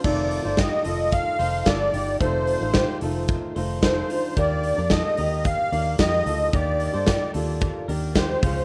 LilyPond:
<<
  \new Staff \with { instrumentName = "Accordion" } { \time 4/4 \key f \mixolydian \tempo 4 = 111 d''4 ees''4 f''4 d''4 | c''4. r4. c''4 | d''4 ees''4 f''4 ees''4 | d''4. r4. c''4 | }
  \new Staff \with { instrumentName = "Clean electric guitar" } { \time 4/4 \key f \mixolydian <f' a'>8. <a' c''>16 <ees' g'>8 <f' a'>4 <a' c''>8 <f' a'>8 <ees' g'>8 | <f' a'>8. <a' c''>16 <ees' g'>8 <f' a'>4 <a' c''>8 <f' a'>8 <d' f'>8 | <g' bes'>8. <bes' d''>16 <ees' a'>8 <g' bes'>4 <bes' d''>8 <g' bes'>8 <f' a'>8 | <g' bes'>8. <a' c''>16 <ees' g'>8 <f' a'>4 <g' bes'>8 <ees' g'>8 <des' f'>8 | }
  \new Staff \with { instrumentName = "Steel-string acoustic guitar" } { \time 4/4 \key f \mixolydian <f, c ees a ees' f'>8. <ees a ees' f'>8. <ees a ees' f'>4 <ees a ees' f'>8 <ees a ees' f'>4 | <f, c ees a ees' f'>8. <ees a ees' f'>8. <ees a ees' f'>4 <ees a ees' f'>8 <ees a ees' f'>4 | <ees bes d' g'>8. <bes d' g'>8. <ees bes d' g'>4 <ees bes d' g'>8 <ees bes g'>4 | <ees bes d' g'>8. <bes d' g'>8. <ees bes d' g'>4 <ees bes d' g'>8 <ees bes d' g'>8 <des f aes f'>8 | }
  \new Staff \with { instrumentName = "Fingered electric bass" } { \clef bass \time 4/4 \key f \mixolydian f,,8. g,,8 r16 f,,8. r16 f,,8 g,,8 g,,8 | f,,8. a,,8 r16 f,,8. r16 f,,4 r8 | ees,8. f,8 r16 ees,8. r16 ees,8 f,8 d,8 | ees,8. g,8 r16 ees,8. r16 ees,4 des,8 | }
  \new DrumStaff \with { instrumentName = "Drums" } \drummode { \time 4/4 <cymc bd>8 hho8 <hh bd sn>8 hho8 <hh bd>8 hho8 <hh bd sn>8 hho8 | <hh bd>8 hho8 <hh bd sn>8 hho8 <hh bd>8 hho8 <hh bd sn>8 hho8 | <hh bd>8 hho8 <hh bd sn>8 hho8 <hh bd>8 hho8 <hh bd sn>8 hho8 | <hh bd>8 hho8 <hh bd sn>8 hho8 <hh bd>8 hho8 <hh bd sn>8 <hho bd>8 | }
>>